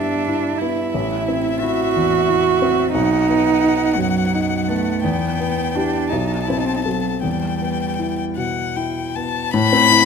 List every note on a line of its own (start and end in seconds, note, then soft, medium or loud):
0.00 0.90 G2 soft
0.00 0.47 G3 soft
0.00 0.62 B3 soft
0.00 0.60 D4 medium
0.00 0.12 E4 soft
0.00 0.90 E5 soft
0.28 0.81 E4 soft
0.59 0.94 B3 soft
0.59 1.62 E4 medium
0.94 2.91 A1 medium
0.94 2.91 E5 medium
1.28 1.82 C4 soft
1.60 2.15 E4 soft
1.60 2.92 F#4 medium
1.96 2.49 E2 soft
2.29 2.82 E4 soft
2.62 2.95 C4 soft
2.92 4.98 B1 medium
2.92 3.97 D#4 medium
2.92 4.99 F#5 medium
3.29 3.84 B3 soft
3.63 4.19 D#4 soft
3.96 4.54 F#2 soft
3.96 4.70 F#3 medium
4.35 4.90 D#4 medium
4.68 5.05 A3 medium
4.68 5.03 B3 soft
5.03 6.09 E2 medium
5.03 5.76 B3 medium
5.03 6.08 G5 medium
5.40 5.97 B3 soft
5.75 6.11 D4 medium
5.75 6.08 E4 soft
5.75 6.08 G4 soft
6.10 7.19 B1 medium
6.10 6.47 D#4 medium
6.10 7.18 A5 soft
6.46 7.08 C4 soft
6.46 6.59 E4 medium
6.58 6.66 D#4 soft
6.65 6.77 C4 soft
6.75 6.85 D#4 soft
6.85 7.22 F#3 medium
6.85 7.19 F#4 soft
6.85 7.19 A4 soft
7.23 9.49 E2 soft
7.23 8.34 G3 medium
7.23 8.25 G5 soft
7.61 8.21 B3 soft
7.99 8.60 E4 soft
8.36 8.99 B2 soft
8.36 8.78 F#5 soft
8.76 9.39 E4 soft
8.76 9.17 G5 soft
9.16 9.53 B3 soft
9.16 9.53 A5 medium
9.54 10.05 A2 medium
9.54 10.05 B5 loud
9.73 10.00 C4 medium
9.91 10.05 E4 medium